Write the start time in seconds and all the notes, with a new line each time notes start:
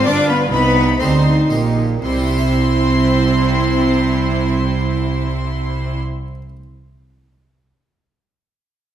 0.05 G1 G2 B3 D4 F4 D5 D6
0.28 B3 B4 B5
0.51 C2 C3 B3 D#4 B4 B5
0.99 D2 D3 C4 D#4 G4 C5 C6
1.50 A#1 A#2 D#4 G4
2.02 C2 C3 C4 E4 C5 C6
2.09 G3
2.16 C4
2.24 E4
2.31 G4
2.38 E5